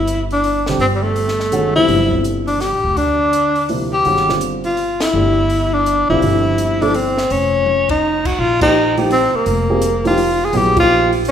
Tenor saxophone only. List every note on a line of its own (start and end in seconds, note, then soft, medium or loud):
0.00 0.27 E4 medium
0.33 0.65 D4 medium
0.81 0.87 C4 medium
0.95 1.04 G3 medium
1.02 1.75 A3 medium
1.75 2.21 E4 medium
2.48 2.63 D4 medium
2.61 2.99 G4 medium
2.97 3.69 D4 medium
3.93 4.32 G4 medium
4.65 4.98 F4 medium
5.02 5.75 E4 medium
5.74 6.09 D4 medium
6.10 6.84 E4 medium
6.82 6.96 D4 medium
6.95 7.33 C4 medium
7.32 7.90 C#4 medium
7.91 8.28 D#4 medium
8.26 8.41 F#4 medium
8.40 8.62 F4 medium
8.62 8.95 D#4 medium
9.12 9.37 C4 medium
9.35 10.06 A#3 medium
10.07 10.46 F4 medium
10.45 10.58 G#4 medium
10.57 10.78 G4 medium
10.80 11.11 F4 loud